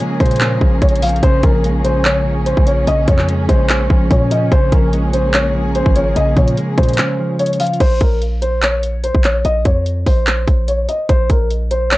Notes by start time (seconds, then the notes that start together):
Already playing: C#3 F3 A#3 C#4 G#4
0.00 G#3
0.20 A#2 C#3 C5, kick, closed hi-hat
0.26 closed hi-hat
0.31 closed hi-hat
0.36 closed hi-hat
0.41 C#3, clap, closed hi-hat
0.61 A#1 F3, kick
0.82 A#1 C#5, kick, closed hi-hat
0.89 closed hi-hat
0.96 closed hi-hat
1.02 F3 F5, closed hi-hat, open hi-hat
1.09 closed hi-hat
1.16 closed hi-hat
1.23 A#1 C#3 C#4 C5, kick, closed hi-hat
1.43 A#1 F3 A#4, kick, closed hi-hat
1.64 G#3, closed hi-hat
1.84 C#3 C5, closed hi-hat
2.05 C#3 C#5, clap, closed hi-hat
2.26 F3
2.46 C5, closed hi-hat
2.57 A#1, kick
2.67 F3 C#5, closed hi-hat
2.87 A#1 C#3 D#5, closed hi-hat
3.08 F2 F3 C#5, kick, closed hi-hat
3.19 clap
3.29 G#3, closed hi-hat
3.49 A#1 C#3 C5, kick, closed hi-hat
3.69 C#3, clap, closed hi-hat
3.90 A#1 F3, kick
4.10 A#2 C#5, kick, closed hi-hat
4.31 F3 D#5, closed hi-hat
4.52 A#1 C#3 A#3 G#4 C5, kick, closed hi-hat
4.72 A#1 F3 A#4, kick, closed hi-hat
4.93 G#3, closed hi-hat
5.13 C#3 C5, closed hi-hat
5.34 C#3 C#5, clap, closed hi-hat
5.54 F3
5.75 C5, closed hi-hat
5.86 G#1, kick
5.95 F3 C#5, closed hi-hat
6.16 A#1 C#3 D#5, closed hi-hat
6.37 A#2 F3 C#5, kick, closed hi-hat
6.48 closed hi-hat
6.57 G#3, closed hi-hat
6.78 A#2 C#3 C5, kick, closed hi-hat
6.83 closed hi-hat
6.89 closed hi-hat
6.93 closed hi-hat
6.98 C#3, clap, closed hi-hat
7.19 F3
7.39 C#5, closed hi-hat
7.46 closed hi-hat
7.53 closed hi-hat
7.60 F3 F5, closed hi-hat, open hi-hat
7.67 closed hi-hat
7.73 closed hi-hat
7.80 A#1 C5, kick, closed hi-hat, crash
8.01 A#1 A#4, kick, closed hi-hat
8.22 closed hi-hat
8.42 C5, closed hi-hat
8.62 C#5, clap, closed hi-hat
8.83 closed hi-hat
9.04 C5, closed hi-hat
9.15 A#1, kick
9.24 C#5, clap, closed hi-hat
9.45 A#1 D#5, closed hi-hat
9.65 F2 C#5, kick, closed hi-hat
9.86 closed hi-hat
10.06 A#1 C5, kick, open hi-hat
10.27 clap, closed hi-hat
10.47 A#1, kick, closed hi-hat
10.68 C#5, closed hi-hat
10.89 D#5, closed hi-hat
11.09 A#1 C5, kick, closed hi-hat
11.30 A#1 A#4, kick, closed hi-hat
11.51 closed hi-hat
11.71 C5, closed hi-hat
11.91 C#5, clap, closed hi-hat